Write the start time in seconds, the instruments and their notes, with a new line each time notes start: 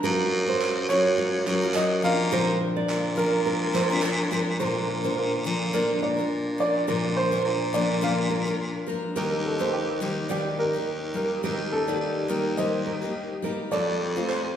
0.03 baritone saxophone F#2, steel-string acoustic guitar F#3 C#4 F4 A#4, nylon-string guitar A#4
0.48 nylon-string guitar C5
0.62 clap
0.89 baritone saxophone F#2, steel-string acoustic guitar F#3 C#4 F4 A#4, upright piano C#5
1.18 nylon-string guitar C#5
1.47 baritone saxophone F#2, steel-string acoustic guitar F#3 C#4 F4 A#4, nylon-string guitar A#4, clap
1.62 steel-string acoustic guitar C#4 F4 A#4
1.74 steel-string acoustic guitar F#3 C#4 F4 A#4, upright piano D#5, clap
2.03 baritone saxophone A#2, steel-string acoustic guitar F3 C4 D4 A#4, upright piano F5
2.31 steel-string acoustic guitar A#2 D3 F3 C4 D4 A#4, nylon-string guitar A#4, upright piano C5
2.76 nylon-string guitar D5
2.89 baritone saxophone A#2, clap
3.16 steel-string acoustic guitar F3 C4 D4 A#4, upright piano A#4
3.46 nylon-string guitar A#4
3.73 steel-string acoustic guitar F3 C4 D4 A#4, nylon-string guitar C5, clap
3.90 steel-string acoustic guitar F3 C4 D4 A#4
4.02 steel-string acoustic guitar F3 C4 D4 A#4, clap
4.31 steel-string acoustic guitar F3 C4 D4 A#4, nylon-string guitar A#4
4.59 steel-string acoustic guitar A#2 D3 F3 A#3 D4 A#4, baritone saxophone A#2, nylon-string guitar A#4, upright piano C5
5.04 steel-string acoustic guitar A#2 D3 F3 A#3 D4 A#4, nylon-string guitar C5
5.17 upright piano A#4
5.45 steel-string acoustic guitar A#2 D3 F3 A#3 D4 A#4, baritone saxophone A#2
5.73 steel-string acoustic guitar A#2 D3 F3 A#3 D4 A#4, upright piano A#4, nylon-string guitar D5
6.02 baritone saxophone A#2, nylon-string guitar A#4, upright piano D5
6.17 steel-string acoustic guitar F3 A#3 D4 A#4
6.58 steel-string acoustic guitar F3 A#3 D4 A#4, upright piano D5
6.87 steel-string acoustic guitar A#2 D3 F3 A#3 D4 A#4, baritone saxophone A#2, nylon-string guitar A#4
7.17 upright piano C5
7.32 steel-string acoustic guitar A#2 D3 F3 A#3 D4 A#4, nylon-string guitar C5
7.45 baritone saxophone A#2
7.73 steel-string acoustic guitar A#2 D3 F3 A#3 D4 A#4, upright piano D5
8.01 steel-string acoustic guitar A#2 D3 F3 A#3 D4 A#4, nylon-string guitar D5, upright piano F5
8.30 nylon-string guitar A#4
8.46 steel-string acoustic guitar F3 A#3 D4 A#4
8.87 steel-string acoustic guitar F3 A#3 D4 A#4, nylon-string guitar A#4
9.16 baritone saxophone D#2, steel-string acoustic guitar D#3 G3 A#3 D#4 G4, nylon-string guitar A#4, upright piano A#4
9.46 upright piano A4
9.59 steel-string acoustic guitar D#3 G3 A#3 D#4 G4, nylon-string guitar C5
9.73 upright piano G4
10.00 baritone saxophone D#2, steel-string acoustic guitar D#3 G3 A#3 D#4 G4
10.29 steel-string acoustic guitar D#3 G3 A#3 D#4 G4, upright piano G4, nylon-string guitar D5
10.59 baritone saxophone D#2, nylon-string guitar A#4, upright piano A#4
10.73 steel-string acoustic guitar A#3 D#4 G4
11.14 steel-string acoustic guitar G3 A#3 D#4 G4, upright piano A#4
11.43 baritone saxophone D#2, steel-string acoustic guitar D#3 G3 A#3 D#4 G4, nylon-string guitar A#4
11.72 upright piano A4
11.88 steel-string acoustic guitar D#3 G3 A#3 D#4 G4, nylon-string guitar D5
12.01 baritone saxophone D#2
12.28 steel-string acoustic guitar D#3 G3 A#3 D#4 G4, upright piano A#4
12.57 steel-string acoustic guitar D#3 G3 A#3 D#4 G4, nylon-string guitar C5, upright piano D#5
12.86 nylon-string guitar A#4
13.02 steel-string acoustic guitar A#3 D#4 G4
13.42 steel-string acoustic guitar G3 A#3 D#4 G4, nylon-string guitar A#4
13.71 baritone saxophone F2, steel-string acoustic guitar F3 A3 C4 F4 G4, nylon-string guitar A4, upright piano D5
14.16 steel-string acoustic guitar F3 A3 C4 F4 G4, nylon-string guitar C5
14.29 upright piano C5, clap